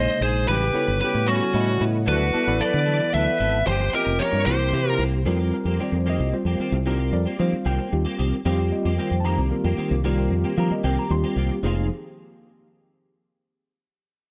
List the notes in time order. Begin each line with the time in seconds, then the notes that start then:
Already playing: C3 C#3 G#3 A#3 D#4 G#4 C5 C#5 D#5
0.20 A#1 D#4 G#4 C5
0.47 A1 G3 B3 C#4 F#4 G4 B4 F#5
0.73 B3 C#4 E4 F#4 A4 B4 C#5, muted fingered electric bass stroke
0.88 G1
1.00 G3 C#4 F#4 G4 B4
1.15 A2
1.26 G3 B3 C#4 E4 F#4 A4 B4 C#5
1.53 A2 G3 B3 C#4 E4 F#4 A4 B4 D#5
1.80 A2 C#4 F#4 B4
2.06 D2 E3 F#3 B3 E4 F#4 A4 B4 D5
2.33 B3 E4 A4 D5
2.47 A1 B3 E4 A4 D5
2.59 F#3 B3 E4 A4 D5, muted fingered electric bass stroke
2.64 B4
2.74 D3
2.86 F#3 B3 E4 A4
3.12 D2 F#3 B3 E4 A4 B4 E5
3.39 G#1 B3 E4 A4
3.66 G1 F3 A#3 C#4 G4 C5
3.92 A#3 C4 C#4 F4 G4 A#4 D#5, muted fingered electric bass stroke
4.06 F1
4.19 F3 A#3 C#4 G4 A#4 C#5
4.33 G2
4.46 C2 E3 A#3 C4 E4 G4 A#4 C5
4.73 C3 E3 A#3 C4 E4 G4 C5
4.89 F4 A#4
4.99 C2 A#3 C4 G4
5.25 F2 D#3 G3 A#3 C4 F4 G4 A#4
5.39 A#3 C4 G4
5.54 A#4
5.65 F2 A#3 C4 G4
5.79 D#3 G3 A#3 C4 F4 G4 C5 D5
5.92 F2
6.06 D#3 A#3 C4 G4 D#5
6.19 C2 A#3 C4 G4
6.33 G3 C4 F4 C5
6.45 F2 A#3 C4 G4
6.59 D#3 A#3 C4 G4, muted fingered electric bass stroke
6.72 C2
6.86 D#3 G3 A#3 C4 F4 G4 A#4
6.99 A#3 C4 G4
7.13 F2 D5
7.26 A#3 C4 G4
7.39 D#3 F3 G3 A#3 C4 F4 G4 C5 F5
7.53 muted fingered electric bass stroke
7.65 C2 D#3 A#3 C4 G4 G5
7.79 A#3 C4 G4
7.92 D#2 G3 C4 F4 G4
8.05 A#3 C4 G4
8.18 C2 D#3 A#3 C4 G4
8.45 F2 D#3 G3 A#3 C4 F4 G4
8.58 A#3 C4 G4
8.72 D#5
8.85 F2 A#3 C4 G4
8.98 D#3 G3 A#3 C4 F4 G4 C5 G5
9.11 F2
9.20 A5
9.24 D#3 A#3 C4 G4 A#5
9.38 C2 A#3 C4 G4
9.51 G3 C4 F4 A#4
9.64 F2 A#3 C4 G4
9.77 D#3 A#3 C4 G4, muted fingered electric bass stroke
9.91 C2
10.04 D#3 G3 A#3 C4 F4 G4 A#4
10.18 A#3 C4 G4
10.30 F2
10.44 A#3 C4 G4
10.57 D#3 F3 G3 A#3 C4 F4 G4 A#4 A#5
10.71 D#5, muted fingered electric bass stroke
10.84 C2 D#3 A#3 C4 G4 G5
10.97 A#3 C4 G4 A#5
11.10 D#2 G3 C4 F4 G4 C6
11.24 A#3 C4 G4
11.36 C2 D#3 A#3 C4 G4
11.63 F1 F3 G#3 A#3 C4 D#4 F4 G#4